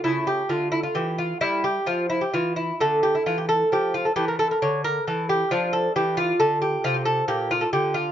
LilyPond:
<<
  \new Staff \with { instrumentName = "Lute" } { \time 12/8 \key d \minor \tempo 4. = 88 e'8 g'8 f'8 e'16 f'16 g'8 f'8 e'8 g'8 f'8 e'16 g'16 f'8 e'8 | a'8 g'16 e'16 f'16 g'16 a'8 g'8 f'16 a'16 g'16 bes'16 a'16 bes'16 cis''8 bes'8 a'8 g'8 | f'8 a'8 g'8 f'8 a'8 g'8 f'16 g'16 a'8 g'8 f'16 a'16 g'8 f'8 | }
  \new Staff \with { instrumentName = "Lute" } { \clef bass \time 12/8 \key d \minor << { a1. | a2. a2. | d'1. | } \\ { cis4 d4 e4 g4 f4 e4 | d4 e4 f4 e4 d4 e4 | f4 e4 d4 c4 bes,4 d4 | } >> }
>>